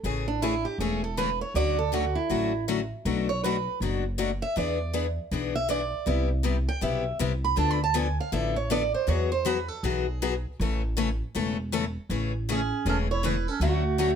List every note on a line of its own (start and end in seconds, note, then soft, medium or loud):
0.04 0.64 A1 medium
0.04 0.25 C#3 medium
0.04 0.25 E3 medium
0.04 0.25 A3 medium
0.04 0.26 C#4 medium
0.04 0.26 G#4 medium
0.28 0.42 D4 medium
0.42 0.53 C#3 medium
0.42 0.53 E3 medium
0.42 0.53 A3 medium
0.42 0.54 C#4 medium
0.42 0.65 E4 medium
0.42 0.54 G#4 medium
0.65 0.79 G4 medium
0.78 1.39 E1 medium
0.78 1.01 C#3 medium
0.78 1.01 E3 medium
0.78 1.01 A3 medium
0.78 1.01 C#4 medium
0.78 1.03 G#4 medium
0.78 1.02 G#4 medium
1.04 1.17 A4 medium
1.17 1.28 C#3 medium
1.17 1.28 E3 medium
1.17 1.29 A3 medium
1.17 1.29 C#4 medium
1.17 1.29 G#4 medium
1.17 1.40 B4 medium
1.41 1.55 C#5 medium
1.54 2.15 D2 medium
1.54 1.76 D3 medium
1.54 1.76 F#3 medium
1.54 1.77 A3 medium
1.54 1.77 C#4 medium
1.54 1.77 F#4 medium
1.54 1.78 D5 medium
1.79 1.92 A4 medium
1.92 2.03 D3 medium
1.92 2.04 F#3 medium
1.92 2.04 A3 medium
1.92 2.04 C#4 medium
1.92 2.04 F#4 medium
1.92 2.16 F#4 medium
2.15 2.64 E4 medium
2.30 2.90 A1 medium
2.30 2.51 D3 medium
2.30 2.51 F#3 medium
2.30 2.51 A3 medium
2.30 2.52 C#4 medium
2.30 2.52 F#4 medium
2.68 2.79 D3 medium
2.68 2.79 F#3 medium
2.68 2.79 A3 medium
2.68 2.79 C#4 medium
2.68 2.80 F#4 loud
3.05 3.66 B1 medium
3.05 3.27 B2 medium
3.05 3.27 F#3 medium
3.05 3.27 A3 medium
3.05 3.27 D4 medium
3.05 3.27 F#4 medium
3.29 3.43 C#5 medium
3.44 3.55 B2 medium
3.44 3.55 F#3 medium
3.44 3.56 A3 medium
3.44 3.55 D4 medium
3.44 3.56 F#4 medium
3.44 3.79 B4 medium
3.80 4.41 F#1 medium
3.80 4.02 B2 medium
3.80 4.03 F#3 medium
3.80 4.03 A3 medium
3.80 4.03 D4 medium
3.80 4.03 F#4 medium
4.18 4.30 B2 medium
4.18 4.30 F#3 medium
4.18 4.30 A3 medium
4.18 4.30 D4 medium
4.18 4.30 F#4 medium
4.42 4.56 E5 loud
4.56 5.17 E2 medium
4.56 4.77 E3 medium
4.56 4.78 B3 medium
4.56 4.78 D4 medium
4.56 4.78 G#4 medium
4.56 4.92 D5 medium
4.93 5.05 E3 medium
4.93 5.05 B3 medium
4.93 5.05 D4 medium
4.93 5.05 G#4 medium
5.31 5.92 B1 medium
5.31 5.53 E3 medium
5.31 5.53 B3 medium
5.31 5.53 D4 medium
5.31 5.54 G#4 medium
5.55 5.69 E5 medium
5.68 5.80 E3 medium
5.68 5.80 B3 medium
5.68 5.81 D4 medium
5.68 5.81 G#4 medium
5.68 6.05 D5 medium
6.06 6.67 C2 medium
6.06 6.28 C3 medium
6.06 6.28 G3 medium
6.06 6.28 B3 medium
6.06 6.28 E4 medium
6.06 6.28 G4 medium
6.43 6.55 C3 medium
6.43 6.56 G3 medium
6.43 6.56 B3 medium
6.43 6.56 E4 medium
6.43 6.56 G4 medium
6.69 6.82 G5 medium
6.81 7.14 B1 medium
6.81 7.03 C3 medium
6.81 7.03 G3 medium
6.81 7.03 B3 medium
6.81 7.03 E4 medium
6.81 7.04 G4 medium
6.81 7.18 E5 medium
7.19 7.52 C2 medium
7.19 7.31 C3 medium
7.19 7.31 G3 medium
7.19 7.31 B3 medium
7.19 7.31 E4 medium
7.19 7.32 G4 medium
7.44 7.58 B5 medium
7.56 8.18 D2 medium
7.56 7.78 D3 medium
7.56 7.78 F3 medium
7.56 7.78 B3 medium
7.56 7.79 D4 medium
7.56 7.79 A4 medium
7.56 7.71 A5 medium
7.71 7.83 B5 medium
7.84 7.96 A5 medium
7.94 8.06 D3 medium
7.94 8.06 F3 medium
7.94 8.06 B3 medium
7.94 8.06 D4 medium
7.94 8.07 A4 medium
7.94 8.19 G#5 medium
8.20 8.33 F5 medium
8.32 8.93 A1 medium
8.32 8.54 D3 medium
8.32 8.54 F3 medium
8.32 8.54 B3 medium
8.32 8.54 D4 medium
8.32 8.54 A4 medium
8.32 8.56 E5 medium
8.56 8.70 C#5 medium
8.70 8.82 D3 medium
8.70 8.82 F3 medium
8.70 8.82 B3 medium
8.70 8.82 D4 medium
8.70 8.82 A4 loud
8.70 8.94 D5 medium
8.94 9.08 C5 medium
9.07 9.68 E2 medium
9.07 9.29 E3 medium
9.07 9.29 F#3 medium
9.07 9.29 B3 medium
9.07 9.29 F#4 medium
9.07 9.30 G#4 medium
9.07 9.31 C#5 medium
9.32 9.46 C5 medium
9.45 9.57 E3 medium
9.45 9.57 F#3 medium
9.45 9.57 B3 medium
9.45 9.57 F#4 loud
9.45 9.58 G#4 medium
9.45 9.68 B4 medium
9.68 9.83 A4 medium
9.83 10.44 B1 medium
9.83 10.05 E3 medium
9.83 10.05 F#3 medium
9.83 10.05 B3 medium
9.83 10.05 F#4 medium
9.83 10.45 G#4 medium
9.83 10.06 G#4 medium
10.22 10.33 E3 medium
10.22 10.33 F#3 medium
10.22 10.33 B3 medium
10.22 10.33 F#4 medium
10.22 10.33 G#4 medium
10.60 11.20 A1 loud
10.60 10.81 C#3 medium
10.60 10.81 E3 medium
10.60 10.81 A3 medium
10.60 10.81 C#4 medium
10.60 10.82 A4 medium
10.97 11.08 C#3 medium
10.97 11.08 E3 medium
10.97 11.08 A3 medium
10.97 11.09 C#4 medium
10.97 11.09 A4 loud
11.35 11.95 E1 medium
11.35 11.56 C#3 medium
11.35 11.56 E3 medium
11.35 11.56 A3 medium
11.35 11.56 C#4 medium
11.35 11.56 A4 medium
11.72 11.84 C#3 medium
11.72 11.84 E3 medium
11.72 11.84 A3 medium
11.72 11.84 C#4 medium
11.72 11.84 A4 loud
12.10 12.70 A1 medium
12.10 12.31 C#3 medium
12.10 12.31 E3 medium
12.10 12.31 A3 medium
12.10 12.31 C#4 medium
12.10 12.32 G#4 medium
12.49 12.59 C#3 medium
12.49 12.59 E3 medium
12.49 12.60 A3 medium
12.49 12.60 C#4 medium
12.49 12.84 C#4 medium
12.49 12.60 G#4 medium
12.49 12.89 G#4 medium
12.85 13.46 E1 medium
12.85 13.07 C#3 medium
12.85 13.07 E3 medium
12.85 13.07 A3 medium
12.85 13.07 C#4 medium
12.85 12.99 C#4 medium
12.85 13.07 G#4 medium
12.89 12.95 A4 medium
13.11 13.25 E4 medium
13.11 13.25 C#5 medium
13.23 13.34 C#3 medium
13.23 13.35 E3 medium
13.23 13.35 A3 medium
13.23 13.35 C#4 medium
13.23 13.51 E4 medium
13.23 13.35 G#4 medium
13.23 13.48 B4 medium
13.48 13.61 C#4 medium
13.48 13.62 A4 medium
13.60 14.15 D2 medium
13.60 13.82 D3 medium
13.60 13.82 F#3 medium
13.60 13.82 A3 medium
13.60 14.15 A3 medium
13.60 13.83 C#4 medium
13.60 13.82 F#4 medium
13.60 14.15 F#4 medium
13.98 14.10 D3 medium
13.98 14.10 F#3 medium
13.98 14.10 A3 medium
13.98 14.10 C#4 medium
13.98 14.10 F#4 medium